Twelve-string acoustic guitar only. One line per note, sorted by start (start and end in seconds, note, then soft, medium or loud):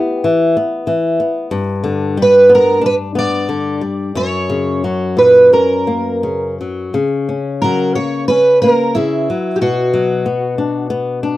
0.00 0.22 G4 medium
2.22 2.54 B4 medium
2.55 2.83 A#4 medium
2.86 2.94 B4 loud
3.19 4.17 D5 loud
4.17 5.18 C#5 medium
5.19 5.53 B4 medium
5.53 6.55 A#4 medium
7.62 7.95 A#4 medium
7.95 8.26 C#5 medium
8.28 8.61 B4 loud
8.62 8.95 A#4 medium
8.95 9.56 E4 medium
9.56 9.61 G4 medium
9.61 10.86 F#4 medium